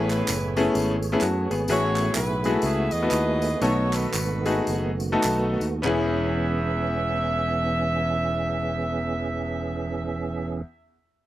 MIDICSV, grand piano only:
0, 0, Header, 1, 2, 480
1, 0, Start_track
1, 0, Key_signature, 4, "major"
1, 0, Tempo, 470219
1, 1721, Time_signature, 4, 2, 24, 8
1, 3177, Tempo, 519481
1, 4617, Tempo, 585366
1, 5577, Tempo, 621762
1, 9765, End_track
2, 0, Start_track
2, 0, Title_t, "Grand piano"
2, 0, Program_c, 0, 0
2, 0, Note_on_c, 0, 45, 66
2, 0, Note_on_c, 0, 57, 82
2, 0, Note_on_c, 0, 59, 72
2, 0, Note_on_c, 0, 61, 80
2, 0, Note_on_c, 0, 64, 72
2, 0, Note_on_c, 0, 68, 94
2, 284, Note_off_c, 0, 57, 0
2, 284, Note_off_c, 0, 59, 0
2, 285, Note_off_c, 0, 61, 0
2, 286, Note_off_c, 0, 64, 0
2, 288, Note_off_c, 0, 68, 0
2, 539, Note_off_c, 0, 45, 0
2, 579, Note_on_c, 0, 57, 94
2, 580, Note_on_c, 0, 59, 86
2, 584, Note_on_c, 0, 61, 89
2, 584, Note_on_c, 0, 64, 87
2, 584, Note_on_c, 0, 68, 102
2, 955, Note_off_c, 0, 57, 0
2, 955, Note_off_c, 0, 59, 0
2, 957, Note_off_c, 0, 64, 0
2, 958, Note_off_c, 0, 61, 0
2, 958, Note_off_c, 0, 68, 0
2, 1145, Note_on_c, 0, 57, 94
2, 1150, Note_on_c, 0, 59, 77
2, 1150, Note_on_c, 0, 61, 80
2, 1156, Note_on_c, 0, 64, 86
2, 1156, Note_on_c, 0, 68, 90
2, 1241, Note_off_c, 0, 57, 0
2, 1244, Note_off_c, 0, 59, 0
2, 1244, Note_off_c, 0, 61, 0
2, 1246, Note_on_c, 0, 66, 66
2, 1247, Note_off_c, 0, 64, 0
2, 1247, Note_off_c, 0, 68, 0
2, 1258, Note_on_c, 0, 57, 59
2, 1520, Note_off_c, 0, 66, 0
2, 1526, Note_off_c, 0, 57, 0
2, 1541, Note_on_c, 0, 68, 66
2, 1542, Note_on_c, 0, 59, 58
2, 1718, Note_off_c, 0, 68, 0
2, 1719, Note_off_c, 0, 59, 0
2, 1726, Note_on_c, 0, 57, 85
2, 1731, Note_on_c, 0, 45, 68
2, 1733, Note_on_c, 0, 64, 70
2, 1733, Note_on_c, 0, 68, 90
2, 1734, Note_on_c, 0, 59, 71
2, 1738, Note_on_c, 0, 66, 75
2, 2197, Note_off_c, 0, 57, 0
2, 2200, Note_off_c, 0, 68, 0
2, 2201, Note_off_c, 0, 59, 0
2, 2201, Note_off_c, 0, 64, 0
2, 2203, Note_off_c, 0, 66, 0
2, 2456, Note_off_c, 0, 45, 0
2, 2502, Note_on_c, 0, 56, 65
2, 2505, Note_on_c, 0, 59, 74
2, 2508, Note_on_c, 0, 66, 72
2, 2508, Note_on_c, 0, 68, 85
2, 2510, Note_on_c, 0, 64, 68
2, 2543, Note_off_c, 0, 56, 0
2, 2561, Note_on_c, 0, 57, 80
2, 2883, Note_off_c, 0, 59, 0
2, 2885, Note_off_c, 0, 66, 0
2, 2885, Note_off_c, 0, 68, 0
2, 2886, Note_off_c, 0, 64, 0
2, 2911, Note_off_c, 0, 57, 0
2, 3085, Note_on_c, 0, 57, 70
2, 3086, Note_on_c, 0, 69, 64
2, 3089, Note_on_c, 0, 64, 62
2, 3089, Note_on_c, 0, 66, 68
2, 3090, Note_on_c, 0, 59, 72
2, 3130, Note_off_c, 0, 69, 0
2, 3149, Note_on_c, 0, 71, 77
2, 3486, Note_off_c, 0, 57, 0
2, 3488, Note_off_c, 0, 64, 0
2, 3488, Note_off_c, 0, 66, 0
2, 3489, Note_off_c, 0, 59, 0
2, 3515, Note_off_c, 0, 71, 0
2, 3643, Note_on_c, 0, 59, 73
2, 3643, Note_on_c, 0, 66, 67
2, 3644, Note_on_c, 0, 57, 75
2, 3644, Note_on_c, 0, 63, 70
2, 3646, Note_on_c, 0, 47, 63
2, 3649, Note_on_c, 0, 69, 80
2, 4116, Note_off_c, 0, 57, 0
2, 4116, Note_off_c, 0, 59, 0
2, 4116, Note_off_c, 0, 63, 0
2, 4116, Note_off_c, 0, 66, 0
2, 4119, Note_off_c, 0, 69, 0
2, 4385, Note_off_c, 0, 47, 0
2, 4418, Note_on_c, 0, 57, 79
2, 4418, Note_on_c, 0, 63, 73
2, 4421, Note_on_c, 0, 68, 86
2, 4422, Note_on_c, 0, 59, 67
2, 4423, Note_on_c, 0, 66, 76
2, 4798, Note_off_c, 0, 57, 0
2, 4798, Note_off_c, 0, 63, 0
2, 4799, Note_off_c, 0, 68, 0
2, 4800, Note_off_c, 0, 59, 0
2, 4800, Note_off_c, 0, 66, 0
2, 4987, Note_on_c, 0, 57, 94
2, 4990, Note_on_c, 0, 59, 79
2, 4990, Note_on_c, 0, 63, 80
2, 4992, Note_on_c, 0, 66, 80
2, 4992, Note_on_c, 0, 69, 91
2, 5408, Note_off_c, 0, 57, 0
2, 5409, Note_off_c, 0, 59, 0
2, 5409, Note_off_c, 0, 63, 0
2, 5410, Note_off_c, 0, 66, 0
2, 5410, Note_off_c, 0, 69, 0
2, 5560, Note_on_c, 0, 59, 84
2, 5566, Note_on_c, 0, 61, 76
2, 5574, Note_on_c, 0, 40, 90
2, 5582, Note_on_c, 0, 64, 74
2, 5590, Note_on_c, 0, 68, 96
2, 9246, Note_off_c, 0, 59, 0
2, 9252, Note_off_c, 0, 61, 0
2, 9260, Note_off_c, 0, 40, 0
2, 9268, Note_off_c, 0, 64, 0
2, 9276, Note_off_c, 0, 68, 0
2, 9765, End_track
0, 0, End_of_file